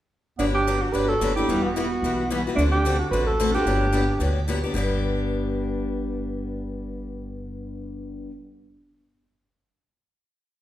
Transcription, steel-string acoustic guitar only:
0.39 0.57 D3 medium
0.39 0.58 F#3 medium
0.39 0.58 B3 medium
0.39 0.58 D4 medium
0.39 0.58 G4 medium
0.67 0.77 D3 medium
0.67 0.77 F#3 medium
0.67 0.77 B3 medium
0.67 0.77 D4 medium
0.67 0.78 G4 medium
0.94 1.12 D3 medium
0.94 1.12 F#3 medium
0.94 1.13 B3 medium
0.94 1.13 D4 medium
0.94 1.13 G4 medium
1.21 1.31 D3 medium
1.21 1.32 F#3 medium
1.21 1.32 B3 medium
1.21 1.32 D4 medium
1.21 1.32 G4 medium
1.37 1.49 B3 soft
1.37 1.48 D4 soft
1.37 1.48 G4 soft
1.49 1.67 E3 medium
1.49 1.67 G3 medium
1.49 1.67 B3 medium
1.49 1.68 F#4 medium
1.76 1.86 E3 medium
1.76 1.86 G3 medium
1.76 1.87 B3 medium
1.76 1.87 F#4 medium
2.04 2.22 E3 medium
2.04 2.22 G3 medium
2.04 2.22 B3 medium
2.04 2.23 F#4 medium
2.30 2.41 E3 medium
2.30 2.41 G3 medium
2.30 2.41 B3 medium
2.30 2.41 F#4 medium
2.47 2.58 G3 soft
2.47 2.58 B3 soft
2.47 2.57 F#4 soft
2.58 2.76 D3 medium
2.58 2.76 A3 medium
2.58 2.77 C4 medium
2.58 2.77 F#4 medium
2.58 2.77 A4 medium
2.85 2.95 D3 medium
2.85 2.95 A3 medium
2.85 2.96 C4 medium
2.85 2.96 F#4 medium
2.85 2.96 A4 medium
3.13 3.31 D3 medium
3.13 3.31 A3 medium
3.13 3.31 C4 medium
3.13 3.31 F#4 medium
3.13 3.31 A4 medium
3.40 3.49 D3 medium
3.40 3.50 A3 medium
3.40 3.50 C4 medium
3.40 3.50 F#4 medium
3.40 3.50 A4 medium
3.54 3.66 C4 soft
3.54 3.66 F#4 soft
3.54 3.65 A4 soft
3.67 3.85 D3 medium
3.67 3.85 F#3 medium
3.67 3.85 B3 medium
3.67 3.85 D4 medium
3.67 3.85 G4 medium
3.92 4.03 D3 medium
3.92 4.03 F#3 medium
3.92 4.03 B3 medium
3.92 4.04 D4 medium
3.92 4.04 G4 medium
4.20 4.38 D3 soft
4.20 4.39 F#3 medium
4.20 4.39 B3 medium
4.20 4.39 D4 medium
4.20 4.39 G4 medium
4.48 4.58 D3 medium
4.48 4.58 F#3 medium
4.48 4.58 B3 medium
4.48 4.58 D4 medium
4.48 4.58 G4 medium
4.64 4.75 B3 soft
4.64 4.75 D4 soft
4.64 4.74 G4 soft
4.74 8.29 G2 medium
4.74 8.30 D3 medium
4.74 8.31 B3 medium
4.74 8.32 D4 medium
4.74 8.33 G4 medium

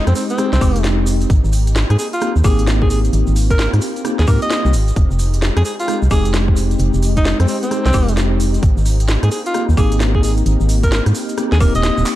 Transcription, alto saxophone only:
0.07 0.12 C4 medium
0.15 0.25 C4 medium
0.30 0.50 C4 medium
0.53 0.84 C4 loud
1.90 1.96 G#4 medium
1.99 2.08 G#4 medium
2.13 2.33 F4 medium
2.45 2.65 G#4 medium
2.82 2.87 G#4 medium
2.90 3.00 G#4 medium
3.51 3.70 A#4 loud
4.19 4.26 G#4 medium
4.28 4.39 A#4 medium
4.42 4.74 D#5 loud
5.57 5.62 G#4 medium
5.65 5.74 G#4 medium
5.80 5.99 F4 medium
6.11 6.32 G#4 medium
7.17 7.36 D#4 loud
7.40 7.45 C4 medium
7.48 7.58 C4 medium
7.63 7.83 C4 medium
7.86 8.17 C4 loud
9.23 9.28 G#4 medium
9.32 9.41 G#4 medium
9.46 9.65 F4 medium
9.77 9.98 G#4 medium
10.15 10.20 G#4 medium
10.23 10.33 G#4 medium
10.83 11.03 A#4 medium
11.52 11.59 G#4 medium
11.61 11.72 A#4 medium
11.75 12.06 D#5 medium

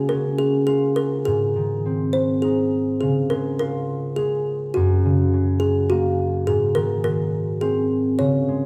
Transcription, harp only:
0.00 1.32 C#3 medium
0.00 1.32 G#3 soft
0.00 2.18 A#3 soft
0.11 1.92 C#4 soft
0.68 3.20 F4 soft
1.27 3.07 G#2 medium
1.56 3.07 D#3 soft
1.86 3.08 C4 soft
2.44 5.14 D#4 soft
3.02 4.81 C#3 soft
3.31 4.17 G#3 soft
3.60 4.82 F4 soft
4.18 4.81 G#3 soft
4.76 6.53 F#2 medium
5.05 6.53 C#3 soft
5.34 6.53 F#3 soft
5.91 8.66 A#3 medium
6.47 8.25 G#2 medium
6.76 8.25 D#3 soft
7.04 8.25 F#3 soft
7.62 8.25 C4 soft
8.19 8.66 C#3 medium
8.48 8.66 G#3 soft

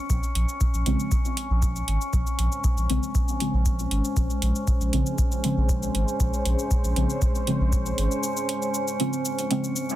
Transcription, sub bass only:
0.10 0.19 A#1 loud
0.35 0.45 A#1 medium
0.74 0.83 A#1 medium
0.86 0.96 A#1 medium
1.50 1.82 A#1 loud
1.88 1.97 G#1 medium
2.13 2.23 A#1 loud
2.39 2.48 A#1 medium
2.77 2.86 A#1 medium
2.90 2.99 A#1 loud
3.54 3.86 A#1 loud
3.91 4.01 G#1 medium
4.17 4.26 A#1 loud
4.42 4.52 A#1 loud
4.81 4.89 A#1 medium
4.93 5.02 A#1 loud
5.57 5.89 A#1 loud
5.95 6.04 G#1 medium
6.20 6.30 A#1 loud
6.46 6.55 A#1 medium
6.84 6.93 A#1 medium
6.96 7.06 A#1 medium
7.61 7.92 A#1 loud
7.98 8.07 G#1 medium

